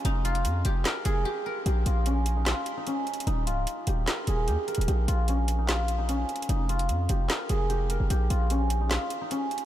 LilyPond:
<<
  \new Staff \with { instrumentName = "Guzheng" } { \time 4/4 \key bes \dorian \tempo 4 = 149 ees'8 f'4 g'8 bes'8 aes'8 g'8 bes'8 | g'8 f'8 des'8. ees'16 f'8. ees'16 des'4 | ees'8 f'4 g'8 bes'8 aes'8 g'8 bes'8 | g'8 f'8 des'8. ees'16 f'8. ees'16 des'4 |
ees'8 f'4 g'8 bes'8 aes'8 g'8 bes'8 | g'8 f'8 des'8. ees'16 f'8. ees'16 des'4 | }
  \new Staff \with { instrumentName = "808-style bass" } { \clef bass \time 4/4 \key bes \dorian f,,4 f,8 f,,8 r8 f,,8 r4 | bes,,8 bes,,4.~ bes,,16 r4. r16 | ees,,8 des,,8 r8 ees,,8 r8 ees,,8 ees,16 r8 ees,,16 | bes,,8 bes,,2. r8 |
f,,4 f,8 f,,8 r8 f,,4~ f,,16 f,,16 | bes,,8 bes,,4.~ bes,,16 r4. r16 | }
  \new DrumStaff \with { instrumentName = "Drums" } \drummode { \time 4/4 hh8 hh16 hh16 hh8 hh8 <hc hh sn>8 hh8 r4 | hh8 hh8 hh8 hh8 <hc hh sn>8 hh8 \tuplet 3/2 { hh16 r16 r16 hh16 hh16 hh16 } | hh8 hh8 hh8 hh8 <hc hh sn>8 hh8 \tuplet 3/2 { hh16 r16 r16 hh16 hh16 hh16 } | hh8 hh8 hh8 hh8 <hc hh sn>8 hh8 \tuplet 3/2 { hh16 r16 r16 hh16 hh16 hh16 } |
hh8 hh16 hh16 hh8 hh8 <hc hh sn>8 hh8 hh8 hh8 | hh8 hh8 hh8 hh8 <hc hh sn>8 hh8 \tuplet 3/2 { hh16 r16 r16 hh16 hh16 r16 } | }
>>